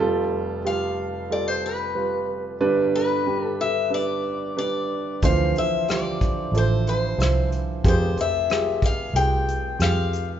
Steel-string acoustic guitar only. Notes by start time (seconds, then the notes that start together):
0.67 F5
1.32 D5
1.48 C5
1.66 B4
2.95 B4
3.44 A4
3.61 E5
3.94 D5
4.58 D5
5.25 F5
5.58 E5
5.91 D5
6.58 C5
6.89 C5
7.88 C5
8.21 E5
8.86 F5
9.16 G5
9.82 F5